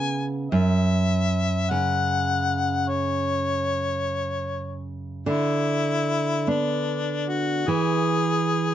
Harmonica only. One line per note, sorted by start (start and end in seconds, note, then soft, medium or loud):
0.00 0.22 G#5 medium
0.51 1.72 E5 medium
1.70 2.90 F#5 medium
2.88 4.86 C#5 medium
5.27 6.50 E4 medium
6.49 7.30 D4 medium
7.29 7.70 F#4 medium
7.68 8.74 G#4 medium